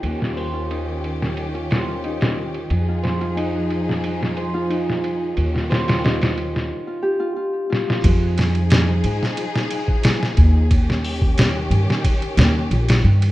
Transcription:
<<
  \new Staff \with { instrumentName = "Synth texture" } { \time 4/4 \key f \minor \tempo 4 = 90 g''1~ | g''1~ | g''2 r2 | r1 |
r1 | }
  \new Staff \with { instrumentName = "Harp" } { \time 4/4 \key f \minor r16 f'16 c''16 f'16 ees'16 r4 f'16 c''16 f'16 ees'16 r8. | r16 f'16 c''16 f'16 ees'16 r4 f'16 c''16 f'16 ees'16 r8. | r16 f'16 c''16 f'16 ees'16 r4 f'16 g'16 f'16 f'16 r16 f'16 f16 | r1 |
r1 | }
  \new Staff \with { instrumentName = "String section" } { \time 4/4 \key f \minor <ees des' g'>1 | <f ees' aes'>1 | <ees des' g'>2 r2 | <f ees' aes'>1 |
<ees des' g'>1 | }
  \new Staff \with { instrumentName = "Upright bass" } { \clef bass \time 4/4 \key f \minor ees,1 | f,1 | ees,2 r2 | f,4. aes,8 r4. ees,8~ |
ees,4. g,8 r8 ees,8 bes,,8 g,8 | }
  \new DrumStaff \with { instrumentName = "Drums" } \drummode { \time 4/4 cymr16 sn16 hho8 cymr8 cymr16 sn16 cymr16 cymr16 <cymr sn>8 cymr16 <cymr sn>8 cymr16 | cymr8 <cymr sn>16 cymr16 cymr8 cymr16 sn16 cymr16 sn16 cymr8 cymr16 sn16 cymr8 | cymr16 sn16 <cymr sn>16 <cymr sn>16 <cymr sn>16 <cymr sn>16 cymr16 sn16 r4 r8 sn16 sn16 | <bd cymr>8 <cymr sn>16 cymr16 <cymr sn>8 cymr16 sn16 cymr16 sn16 cymr16 bd16 <cymr sn>16 sn16 <bd cymr>8 |
<bd cymr>16 sn16 hho16 bd16 <cymr sn>8 cymr16 sn16 <bd cymr>16 cymr16 <cymr sn>8 cymr16 <cymr sn>8 cymr16 | }
>>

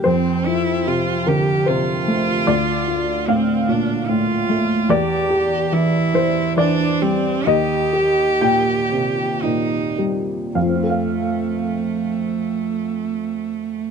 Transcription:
<<
  \new Staff \with { instrumentName = "Cello" } { \time 3/4 \key f \major \tempo 4 = 70 c'8 e'8 f'8 g'8 f'4~ | f'4 c'8 d'8 f'4 | g'4 e'4 d'8 c'8 | g'2 ees'8 r8 |
a2. | }
  \new Staff \with { instrumentName = "Upright piano" } { \time 3/4 \key f \major c''4. bes'8 c''4 | d''4 f''2 | d''4. c''8 d''4 | ees''4 g''2 |
<f, f c' f' a' f''>2. | }
  \new Staff \with { instrumentName = "Upright piano" } { \clef bass \time 3/4 \key f \major f,8 f8 c8 d8 c8 a8 | d,8 f'8 a,8 bes,8 a,8 a8 | e,8 g'8 e8 e8 e8 g8 | ees,8 g'8 bes,8 c8 bes,8 g8 |
r2. | }
>>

